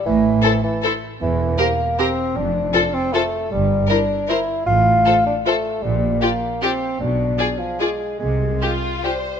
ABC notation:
X:1
M:3/4
L:1/8
Q:1/4=152
K:Am
V:1 name="Violin section"
z2 c2 c2 | [K:F] z2 c2 c2 | z2 c2 c2 | z2 c2 c2 |
z2 c2 c2 | z2 d2 d2 | z2 d2 d2 | z2 F2 c2 |]
V:2 name="Violin section"
z2 A2 A2 | [K:F] z2 B2 B2 | z2 A2 A2 | z2 B2 B2 |
z2 A2 A2 | z2 G2 G2 | z2 ^G2 G2 | z2 G2 G2 |]
V:3 name="Viola section"
z2 E2 E2 | [K:F] z2 G2 G2 | z2 F2 F2 | z2 E2 E2 |
z2 F2 F2 | z2 F2 F2 | z2 F2 F2 | z2 F2 F2 |]
V:4 name="Bassoon"
E,3 E, z2 | [K:F] E,2 B,2 C2 | D3 C A,2 | G,2 D2 E2 |
F3 D A,2 | G,2 B,2 C2 | D3 F, ^G,2 | _A,3 z G,2 |]
V:5 name="Cello section" clef=bass
A,,2 z4 | [K:F] E,,2 z4 | F,,2 z4 | G,,2 z4 |
A,,2 z4 | B,,2 z4 | =B,,2 z4 | C,2 z4 |]
V:6 name="Double bass section" clef=bass
A,,,2 z4 | [K:F] E,,,2 z4 | F,,,2 z4 | G,,,2 z4 |
A,,,2 z4 | B,,,2 z4 | =B,,,2 z4 | C,,2 z4 |]